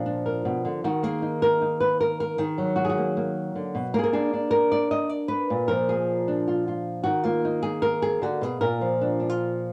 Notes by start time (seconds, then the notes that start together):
Already playing: A#2 F3 F4
0.06 D4
0.25 A#4
0.45 B2
0.65 D3
0.84 D#3 F#4
1.03 A#3 G#4
1.22 D#4
1.42 A#4
1.62 D#4
1.81 B4
2.01 A#4
2.20 A#4
2.38 D#3 G#4
2.58 F#3
2.76 F#4
2.85 G#4
2.90 F#4
2.98 A#3
3.17 A#3
3.56 D3
3.75 B2
3.94 A#3 A#4
3.99 G#4
4.04 A#4
4.13 D4 G#4
4.33 D4
4.51 A#4
4.72 D5
4.91 D#5
5.09 D5
5.28 B4
5.50 A#2
5.68 F3 A#4
5.89 G#4
6.28 D4
6.48 F4
6.68 F4
7.03 D#3 F#4
7.23 A#3 F4
7.45 D#4
7.63 G#4
7.82 A#4
8.02 G#4
8.22 D3 F#4
8.41 B2 G#4
8.61 A#2 A#4
8.81 F3
9.01 D4
9.20 D4
9.29 F4